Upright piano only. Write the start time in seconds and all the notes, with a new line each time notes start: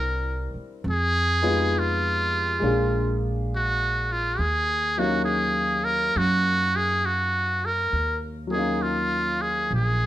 Already playing: G3 C4 D4 E4 A#4
1.42 G#3 B3 D#4 F4 G#4
2.60 G#3 A#3 D4 F5
2.66 G#4
4.97 F#3 A#3 C#4 D#4 F5
8.47 F#3 A#3
8.52 C#4 D#4
8.58 F5